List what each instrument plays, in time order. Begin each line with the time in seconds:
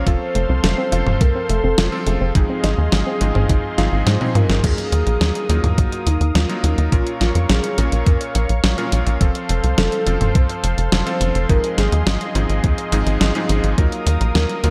Already playing: soft synth lead C5, analog synth pad F5
0.07 analog synth bass F1, electric grand piano F3 C4 F4 A4, synth arpeggio sound F4, analog synth pad A4 C5 C6, kick, closed hi-hat
0.35 analog synth bass F1, synth arpeggio sound A3, closed hi-hat
0.49 analog synth bass C2, synth arpeggio sound C4
0.64 analog synth bass F1, synth arpeggio sound A3, snare, closed hi-hat
0.78 synth arpeggio sound C4
0.92 analog synth bass F1, electric grand piano F3 C4 F4 A4, synth arpeggio sound F4, closed hi-hat
1.06 analog synth bass F1, mid tom
1.21 analog synth bass C2, synth arpeggio sound A3, soft synth lead A#4, kick, closed hi-hat
1.35 synth arpeggio sound C4
1.49 analog synth bass F1, synth arpeggio sound A3, soft synth lead A4, closed hi-hat
1.64 analog synth bass F1, synth arpeggio sound C4
1.78 analog synth bass F1, synth arpeggio sound F4, snare, closed hi-hat
1.92 electric grand piano F3 C4 F4 A4
2.06 analog synth bass F1, synth arpeggio sound A3, soft synth lead G#4, closed hi-hat
2.21 analog synth bass F1, synth arpeggio sound C4
2.35 analog synth bass G#1, electric grand piano G#2 F3 G#3 C4 D#4 G#4, synth arpeggio sound G#3, analog synth pad G#4 D#5 F5 C6, kick, closed hi-hat
2.50 synth arpeggio sound C4
2.64 analog synth bass G#1, synth arpeggio sound D#4, snare, closed hi-hat
2.78 analog synth bass D#2
2.92 analog synth bass G#1, synth arpeggio sound G#3, snare, closed hi-hat
3.07 synth arpeggio sound C4
3.21 analog synth bass G#1, electric grand piano G#2 F3 G#3 C4 D#4 G#4, synth arpeggio sound G#3, closed hi-hat
3.35 analog synth bass G#1, synth arpeggio sound C4, mid tom
3.49 analog synth bass G#1, synth arpeggio sound D#4, kick, closed hi-hat
3.78 analog synth bass G#1, electric grand piano G#2 F3 G#3 C4 D#4 G#4, synth arpeggio sound F4, snare, closed hi-hat
3.92 analog synth bass G#1, synth arpeggio sound F4
4.07 analog synth bass G#2, synth arpeggio sound G#3, soft synth lead C5, snare, closed hi-hat
4.21 electric grand piano G#2 F3 G#3 C4 D#4 G#4, synth arpeggio sound C4, mid tom
4.35 analog synth bass G#2, synth arpeggio sound F4, soft synth lead A#4, closed hi-hat, mid tom
4.49 analog synth bass G#1, snare, mid tom
4.64 analog synth bass D#2, electric grand piano F#3 A#3 D#4 F4 A#4, soft synth lead G#4, analog synth pad A#4 F5 D#6, kick, closed hi-hat, crash
4.78 closed hi-hat
4.92 analog synth bass D#2, closed hi-hat
5.07 analog synth bass A#1, closed hi-hat
5.21 analog synth bass D#2, snare, closed hi-hat
5.35 closed hi-hat
5.49 analog synth bass D#2, electric grand piano F#3 A#3 D#4 F4 A#4, closed hi-hat
5.64 analog synth bass D#2, closed hi-hat, mid tom
5.78 analog synth bass A#1, soft synth lead F#4, kick, closed hi-hat
5.92 closed hi-hat
6.06 analog synth bass D#2, soft synth lead D#4, closed hi-hat
6.21 analog synth bass D#2, closed hi-hat
6.35 analog synth bass D#2, soft synth lead F4, snare, closed hi-hat
6.49 electric grand piano F#3 A#3 D#4 F4 A#4, closed hi-hat
6.63 analog synth bass D#2, soft synth lead D#4, closed hi-hat
6.78 analog synth bass D#2, closed hi-hat
6.92 analog synth bass A#1, electric grand piano A#2 C#4 F4 A#4, soft synth lead F4, analog synth pad C#5 C#6, kick, closed hi-hat
7.07 closed hi-hat
7.20 analog synth bass A#1, soft synth lead F4, snare, closed hi-hat
7.35 analog synth bass F2, closed hi-hat
7.49 analog synth bass A#1, soft synth lead G#4, snare, closed hi-hat
7.64 closed hi-hat
7.78 analog synth bass A#1, electric grand piano A#2 C#4 F4 A#4, soft synth lead A#4, closed hi-hat
7.92 analog synth bass A#1, closed hi-hat
8.06 analog synth bass F2, kick, closed hi-hat
8.21 closed hi-hat
8.35 analog synth bass A#1, closed hi-hat
8.49 analog synth bass A#1, closed hi-hat
8.64 analog synth bass A#1, snare, closed hi-hat
8.78 electric grand piano A#2 C#4 F4 A#4, closed hi-hat
8.92 analog synth bass A#1, closed hi-hat
9.07 analog synth bass A#1, closed hi-hat
9.21 analog synth bass F1, electric grand piano F3 C4 F4 A4, analog synth pad A4 C5 C6, kick, closed hi-hat
9.35 closed hi-hat
9.49 analog synth bass F1, closed hi-hat
9.64 analog synth bass C2, closed hi-hat
9.78 analog synth bass F1, soft synth lead A4, snare, closed hi-hat
9.92 closed hi-hat
10.07 analog synth bass F1, electric grand piano F3 C4 F4 A4, closed hi-hat
10.21 analog synth bass F1, closed hi-hat, mid tom
10.35 analog synth bass C2, soft synth lead C5, kick, closed hi-hat
10.49 closed hi-hat
10.64 analog synth bass F1, closed hi-hat
10.78 analog synth bass F1, closed hi-hat
10.92 analog synth bass F1, soft synth lead C5, snare, closed hi-hat
11.07 electric grand piano F3 C4 F4 A4, closed hi-hat
11.21 analog synth bass F1, closed hi-hat
11.35 analog synth bass F1, closed hi-hat
11.49 analog synth bass G#1, electric grand piano G#2 F3 G#3 C4 D#4 G#4, analog synth pad G#4 D#5, soft synth lead A#4, kick, closed hi-hat
11.64 closed hi-hat
11.78 analog synth bass G#1, soft synth lead G#4, snare, closed hi-hat
11.92 analog synth bass D#2, closed hi-hat
12.06 analog synth bass G#1, snare, closed hi-hat
12.21 closed hi-hat
12.35 analog synth bass G#1, electric grand piano G#2 F3 G#3 C4 D#4 G#4, closed hi-hat
12.49 analog synth bass G#1, closed hi-hat
12.64 analog synth bass D#2, kick, closed hi-hat
12.78 closed hi-hat
12.92 analog synth bass G#1, electric grand piano G#2 F3 G#3 C4 D#4 G#4, closed hi-hat
13.06 analog synth bass G#1, closed hi-hat
13.21 analog synth bass G#1, snare, closed hi-hat
13.35 electric grand piano G#2 F3 G#3 C4 D#4 G#4, closed hi-hat
13.49 analog synth bass G#1, closed hi-hat
13.64 analog synth bass G#1, closed hi-hat
13.78 analog synth bass D#2, electric grand piano F#3 A#3 D#4 F4 A#4, analog synth pad A#4 F5 D#6, kick, closed hi-hat
13.92 closed hi-hat
14.06 analog synth bass D#2, closed hi-hat
14.21 analog synth bass A#1, closed hi-hat
14.35 analog synth bass D#2, soft synth lead A#4, snare, closed hi-hat
14.49 closed hi-hat
14.64 analog synth bass D#2, electric grand piano F#3 A#3 D#4 F4 A#4, closed hi-hat